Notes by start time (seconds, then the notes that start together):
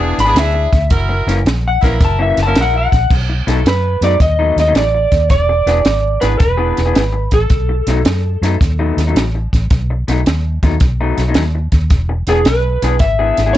Already playing: E1 D4 E4 G#4
0.00 E3 B3 D4
0.18 G#1 B5, snare, closed hi-hat
0.25 E3 B3 D4 E4 G#4
0.35 D2, snare, closed hi-hat
0.39 E5
0.54 muted clean electric guitar stroke
0.73 D2, kick, snare, closed hi-hat
0.90 F#1 E4 F#4 A#4, kick, snare, closed hi-hat
1.09 muted clean electric guitar stroke
1.27 F#1 F#2 E3 A#3 C#4, snare, closed hi-hat
1.45 A#1, muted clean electric guitar stroke, snare, closed hi-hat
1.68 F#5
1.81 A#1 F#2 E3 A#3 C#4 E4 F#4 A#4, kick, snare, closed hi-hat
2.01 F#1 A5, muted clean electric guitar stroke, kick, snare, closed hi-hat
2.19 F#2 E3 A#3 C#4 E5
2.37 F#1, snare, closed hi-hat
2.43 E4 F#4 A5
2.47 F#2 E3 A#3 C#4 A#4
2.56 A#1, snare, closed hi-hat
2.61 F#5
2.73 muted clean electric guitar stroke
2.78 F#5
2.92 A#1, kick, snare, closed hi-hat
3.10 B1, kick, snare, crash
3.29 muted clean electric guitar stroke
3.47 B1 B2 F#3 A3 D#4 A4, snare, closed hi-hat
3.65 F#2 B4, muted clean electric guitar stroke, snare, closed hi-hat
4.01 F#2 B2 F#3 A3 D#4 D5, snare, closed hi-hat
4.20 D#2 D#5, muted clean electric guitar stroke, kick, snare, closed hi-hat
4.39 B2 F#3 A3 D#4
4.56 D#2 D#5, snare, closed hi-hat
4.68 B2 F#3 A3 D#4
4.74 A1 D5, snare, closed hi-hat
4.94 muted clean electric guitar stroke
5.12 D#2, kick, snare, closed hi-hat
5.30 E1 D5, kick, snare, closed hi-hat
5.49 muted clean electric guitar stroke
5.66 E1 E3 B3 D4 G#4, snare, closed hi-hat
5.85 G#1, muted clean electric guitar stroke, snare, closed hi-hat
6.21 G#1 E3 B3 D4 G#4 B4, snare, closed hi-hat
6.39 E1 B4, muted clean electric guitar stroke, kick, snare, closed hi-hat
6.57 E3 B3 D4 G#4
6.77 E1, snare, closed hi-hat
6.86 E3 B3 D4 G#4
6.95 G#1, snare, closed hi-hat
7.13 muted clean electric guitar stroke
7.31 A1 A4, kick, snare, closed hi-hat
7.50 B1, kick, snare, closed hi-hat
7.69 muted clean electric guitar stroke
7.87 B1 B2 F#3 A3 D#4, snare, closed hi-hat
8.05 F#2, muted clean electric guitar stroke, snare, closed hi-hat
8.42 F#2 B2 F#3 A3 D#4, snare, closed hi-hat
8.61 D#2, muted clean electric guitar stroke, kick, snare, closed hi-hat
8.79 B2 F#3 A3 D#4
8.97 D#2, snare, closed hi-hat
9.07 B2 F#3 A3 D#4
9.15 A1, snare, closed hi-hat
9.35 muted clean electric guitar stroke
9.53 A1, kick, snare, closed hi-hat
9.70 B1, kick, snare, closed hi-hat
9.90 muted clean electric guitar stroke
10.08 B1 B2 F#3 A3 D#4, snare, closed hi-hat
10.26 D#2, muted clean electric guitar stroke, snare, closed hi-hat
10.63 D#2 B2 F#3 A3 D#4, kick, snare, closed hi-hat
10.80 B1, muted clean electric guitar stroke, kick, snare, closed hi-hat
11.01 B2 F#3 A3 D#4
11.18 B1, snare, closed hi-hat
11.28 B2 F#3 A3 D#4
11.34 D#2, snare, closed hi-hat
11.55 muted clean electric guitar stroke
11.72 D#2, kick, snare, closed hi-hat
11.90 E1, kick, snare, closed hi-hat
12.09 muted clean electric guitar stroke
12.27 E1 E3 B3 D4 G#4, snare, closed hi-hat
12.45 B1 B4, muted clean electric guitar stroke, snare, closed hi-hat
12.82 B1 E3 B3 D4 G#4, snare, closed hi-hat
12.99 G#1 E5, muted clean electric guitar stroke, kick, snare, closed hi-hat
13.19 E3 B3 D4 G#4
13.37 G#1, snare, closed hi-hat
13.46 E3 B3 D4 G#4
13.53 D5